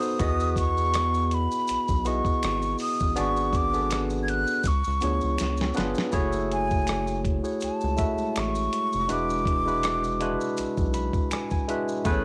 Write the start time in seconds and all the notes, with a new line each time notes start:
Already playing: B3 D#4 F#4 A4 C5 D#6
0.02 maracas
0.19 E2 B3 E4 F#4 G#4 D#5, kick, closed hi-hat, maracas
0.40 maracas
0.56 C#6, kick, closed hi-hat, maracas
0.78 maracas
0.94 finger snap, cross-stick, closed hi-hat, maracas
1.14 maracas
1.31 B5, closed hi-hat
1.52 maracas
1.68 B1, closed hi-hat, maracas
1.88 B1, kick, maracas
2.05 B3 E4 F#4 G#4 D#5 C#6, closed hi-hat, maracas
2.25 kick, maracas
2.43 G#1, finger snap, cross-stick, closed hi-hat, maracas
2.62 maracas
2.78 D#6, open hi-hat, maracas
3.00 A1, kick, maracas
3.15 G#1 B3 D4 F#4 G#4 D5 C#6, closed hi-hat, maracas
3.37 maracas
3.53 D6, kick, closed hi-hat, maracas
3.73 B3 D4 F#4 G#4 A4, maracas
3.82 B4
3.91 finger snap, cross-stick, closed hi-hat, maracas
4.10 maracas
4.23 G#6
4.28 F#6, closed hi-hat
4.47 maracas
4.63 C#2, kick, closed hi-hat, maracas
4.67 C#6
4.84 C#2, maracas
5.00 D2 B3 D4 F4 G#4 C#5, closed hi-hat, maracas
5.21 C#2, maracas
5.38 C#2, finger snap, snare, closed hi-hat, maracas
5.57 maracas
5.61 snare
5.74 B3 D4 F4 G#4 B4, closed hi-hat, maracas
5.78 G1, snare
5.95 snare, maracas
6.12 F#1 A3 E4 F#4 G#4 C#5, kick, closed hi-hat, maracas
6.32 maracas
6.52 G#5, closed hi-hat
6.71 kick, maracas
6.87 finger snap, cross-stick, closed hi-hat, maracas
7.07 maracas
7.25 kick, closed hi-hat
7.43 A3 E4 F#4 G#4 C#5, maracas
7.60 C#2 A5, closed hi-hat, maracas
7.81 C#2, maracas
7.97 G#3 A3 E4 F#4 E5, kick, closed hi-hat, maracas
8.18 maracas
8.36 A1 C#6, finger snap, cross-stick, closed hi-hat, maracas
8.55 maracas
8.73 closed hi-hat
8.93 F1, maracas
9.08 E1 G#3 D4 E4 F#4 B4 D6, closed hi-hat, maracas
9.30 maracas
9.45 kick, closed hi-hat
9.65 G#3 D4 E4 F#4 B4, maracas
9.83 finger snap, cross-stick, closed hi-hat, maracas
10.04 maracas
10.20 G#3 D4 E4 F#4 B4, closed hi-hat
10.41 maracas
10.57 B1, closed hi-hat, maracas
10.77 B1, kick, maracas
10.94 B5, closed hi-hat, maracas
11.13 kick, maracas
11.31 G#5, finger snap, cross-stick, closed hi-hat, maracas
11.51 G#5, kick, maracas
11.68 G#3 D4 E4 F#4 B4 E5, closed hi-hat
11.89 maracas
12.05 A1 A3 B3 E4 G#4 B4, kick, closed hi-hat, maracas
12.12 C#4